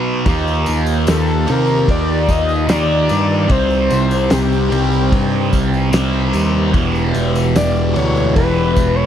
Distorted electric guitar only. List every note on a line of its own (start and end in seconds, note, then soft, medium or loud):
0.00 0.23 B2 medium
0.00 0.24 F#3 medium
0.00 0.25 B3 medium
0.27 1.46 D#3 medium
0.27 1.46 A#3 medium
0.27 1.47 D#4 loud
1.47 2.67 D#3 medium
1.47 2.68 A#3 medium
1.47 2.67 D#4 medium
2.68 3.47 D#3 medium
2.68 3.48 A#3 medium
2.72 3.49 D#4 medium
3.48 4.68 C3 medium
3.48 4.71 G3 medium
3.48 4.68 C4 loud
4.70 5.90 C3 medium
4.70 5.91 G3 medium
4.70 5.90 C4 medium
5.91 6.71 C3 medium
5.91 6.72 G3 medium
5.95 6.73 C4 medium
6.73 7.93 E2 loud
6.73 7.94 B2 loud
6.73 7.92 E3 loud
7.93 9.06 B2 medium
7.93 9.06 E3 medium
7.98 9.06 E2 medium